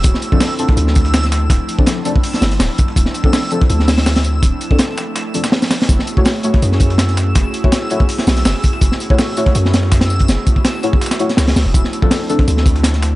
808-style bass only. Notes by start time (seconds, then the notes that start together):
0.04 D1
0.77 D2
1.50 D1
2.42 G1
2.60 D1
2.96 D1
3.70 D2
4.43 D1
5.89 F#1
6.62 F#2
7.36 F#1
8.27 B1
8.46 F#1
8.81 F#1
9.55 F#2
10.28 F#1
11.38 C#2
11.56 C#2
11.66 E1
11.74 D1
12.48 D2